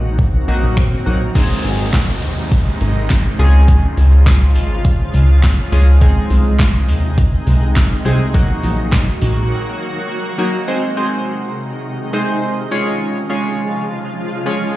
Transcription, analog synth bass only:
0.00 0.19 A#1 loud
0.34 0.43 A#1 medium
0.48 0.58 A#1 loud
0.63 0.92 A#1 medium
1.06 1.17 A#1 loud
1.64 2.24 G#1 medium
2.23 2.62 D#2 loud
2.81 3.20 G#1 medium
3.39 3.78 C#2 loud
3.97 4.57 C#2 medium
4.56 4.95 G#1 medium
5.14 5.53 C#2 medium
5.72 6.11 C#2 loud
6.30 6.90 C2 medium
6.89 7.28 D#2 loud
7.47 7.86 C2 medium
8.05 8.44 C2 loud
8.63 9.02 A#1 loud
9.22 9.41 A#1 medium

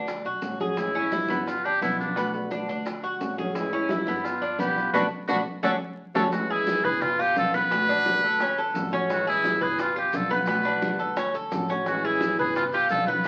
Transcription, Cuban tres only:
0.00 0.24 D4 medium
0.26 0.59 F#4 medium
0.61 0.94 G#4 medium
0.95 1.12 C#4 medium
1.12 1.29 E4 medium
1.30 1.63 B3 medium
1.65 1.82 D4 medium
1.82 2.16 B3 medium
2.17 2.50 B3 medium
2.51 2.68 D4 medium
2.69 3.03 D4 medium
3.04 3.37 F#4 medium
3.38 3.72 G#4 medium
3.73 3.90 C#4 medium
3.90 4.07 E4 medium
4.08 4.41 B3 medium
4.42 4.59 D4 medium
4.59 4.93 B3 medium
4.94 5.05 B3 loud
4.94 5.05 D4 medium
4.94 5.05 F#4 medium
5.29 5.40 B3 medium
5.29 5.40 D4 medium
5.29 5.40 F#4 medium
5.63 5.74 C#4 medium
5.63 5.74 D4 medium
5.63 5.74 F#4 medium
6.15 6.27 C#4 medium
6.15 6.26 D4 medium
6.15 6.27 F#4 loud
6.50 6.84 G#4 medium
6.85 7.18 B4 medium
7.19 7.53 F4 medium
7.54 7.70 B3 medium
7.72 7.88 B3 medium
7.89 8.22 D4 medium
8.24 8.40 A4 medium
8.41 8.58 C#4 medium
8.58 8.92 A4 medium
8.93 9.26 C#4 medium
9.27 9.61 G#4 medium
9.61 9.95 B4 medium
9.96 10.30 F4 medium
10.30 10.47 B3 medium
10.48 10.65 B3 medium
10.65 10.99 D4 medium
10.99 11.16 A4 medium
11.17 11.34 C#4 medium
11.35 11.68 A4 medium
11.70 12.03 C#4 medium
12.05 12.38 G#4 medium
12.39 12.72 B4 medium
12.74 13.07 F4 medium
13.08 13.24 B3 medium

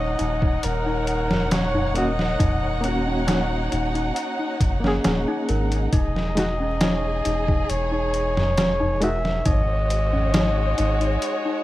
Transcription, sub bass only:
0.00 0.15 D#1 loud
0.20 0.59 D#1 loud
0.64 2.36 D#1 loud
2.40 3.68 D#1 loud
3.72 4.11 D#1 loud
4.61 5.00 F#1 medium
5.05 5.25 D#1 loud
5.49 5.88 G#1 loud
5.93 7.21 E1 medium
7.26 7.64 E1 loud
7.70 9.42 E1 loud
9.46 10.74 G#1 loud
10.79 11.18 G#1 loud

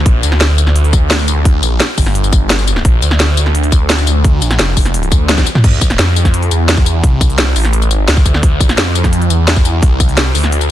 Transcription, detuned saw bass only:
0.06 0.22 A#1 loud
0.23 1.61 D2 medium
1.63 1.79 A#1 loud
1.98 2.49 G1 medium
2.50 2.83 G1 loud
2.85 3.01 A#1 loud
3.02 4.40 D2 loud
4.42 4.58 A#1 loud
4.59 5.10 F1 loud
5.12 5.45 D2 loud
5.64 5.97 D2 loud
5.99 6.50 F2 loud
6.51 7.02 E2 loud
7.03 7.54 C2 loud
7.56 8.07 A1 medium
8.08 8.42 D2 loud
8.43 8.77 D2 loud
8.78 9.29 F2 loud
9.30 9.81 E2 loud
9.83 10.33 C2 loud
10.35 10.71 D2 medium

